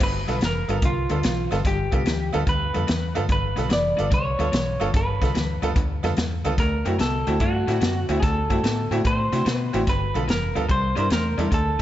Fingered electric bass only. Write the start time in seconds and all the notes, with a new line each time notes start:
0.01 G1
0.28 B1
0.42 F1
0.69 G1
0.82 C2
1.11 D2
1.24 B1
1.52 G1
1.65 G1
1.93 C2
2.06 D2
2.35 D2
2.47 D2
2.76 F2
2.90 E2
3.18 G2
3.29 G1
3.58 B1
3.71 F1
4.00 G1
4.12 C2
4.39 D2
4.53 B1
4.81 G1
4.94 G1
5.22 C2
5.35 D2
5.62 D2
5.76 D2
6.04 F2
6.18 E2
6.45 C#2
6.58 D2
6.86 F#2
7.00 C2
7.27 D2
7.40 G2
7.68 A2
7.81 F#2
8.09 D2
8.23 D2
8.50 G2
8.63 A2
8.91 A2
9.05 A2
9.33 C3
9.46 B2
9.74 A1
9.88 G1
10.15 B1
10.28 F1
10.56 D2
10.69 C2
10.97 G2
11.11 E2
11.38 E2
11.52 D2